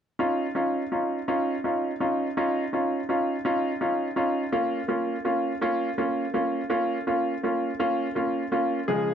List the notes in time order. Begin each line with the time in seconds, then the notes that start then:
0.19 C#4 D#4 F4
0.55 C#4 D#4 F4
0.92 C#4 D#4 F4
1.28 C#4 D#4 F4
1.64 C#4 D#4 F4
2.00 C#4 D#4 F4
2.37 C#4 D#4 F4
2.73 C#4 D#4 F4
3.09 C#4 D#4 F4
3.45 C#4 D#4 F4
3.81 C#4 D#4 F4
4.16 C#4 D#4 F4
4.52 A#3 C#4 F4
4.88 A#3 C#4 F4
5.25 A#3 C#4 F4
5.61 A#3 C#4 F4
5.98 A#3 C#4 F4
6.34 A#3 C#4 F4
6.70 A#3 C#4 F4
7.07 A#3 C#4 F4
7.43 A#3 C#4 F4
7.79 A#3 C#4 F4
8.15 A#3 C#4 F4
8.52 A#3 C#4 F4
8.88 C#3 F3 G#3 G#4